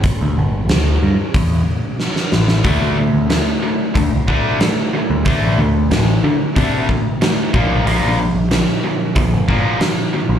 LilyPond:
<<
  \new Staff \with { instrumentName = "Distorted electric guitar" } { \clef bass \time 4/4 \key d \minor \tempo 4 = 92 r1 | <d a d'>8 <d a>8 <d a>8 <d a>8 <d a>8 <d a d'>8 <d a>8 <d a>8 | <d a d'>8 <d a>8 <d a>8 <d a>8 <d a d'>8 <d a>8 <d a>8 <bes, f bes>8 | <bes, f bes>8 <bes, f>8 <bes, f>8 <bes, f>8 <bes, f>8 <bes, f bes>8 <bes, f>8 <bes, f>8 | }
  \new Staff \with { instrumentName = "Overdriven electric guitar" } { \clef bass \time 4/4 \key d \minor r1 | <d a d'>8 <d a>8 <d a>8 <d a>8 <d a>8 <d a d'>8 <d a>8 <d a>8 | <d a d'>8 <d a>8 <d a>8 <d a>8 <d a d'>8 <d a>8 <d a>8 <bes, d bes>8 | <bes, d bes>8 <bes, d>8 <bes, d>8 <bes, d>8 <bes, d>8 <bes, d bes>8 <bes, d>8 <bes, d>8 | }
  \new Staff \with { instrumentName = "Picked electric bass" } { \clef bass \time 4/4 \key d \minor r16 d,16 g,,8 d,8 g,16 r16 e,8 r4 a,,8 | d,16 d,8 d,8 r8. d,16 c,8 r4 d,16 | r16 a,,16 d,8 a,,8 d16 r16 c8 r4 bes,,8 | bes,,16 bes,,8 bes,,8 r8. bes,,16 g,,8 r4 bes,,16 | }
  \new DrumStaff \with { instrumentName = "Drums" } \drummode { \time 4/4 <hho bd>4 <hho sn>4 <hho bd>4 sn16 sn16 sn16 sn16 | <hho bd>4 <hho sn>4 <hho bd>8 bd8 <hho sn>4 | <hho bd>4 <hho sn>4 <hho bd>8 bd8 <hho sn>8 bd8 | hho4 <hho sn>4 <hho bd>8 bd8 <hho sn>4 | }
>>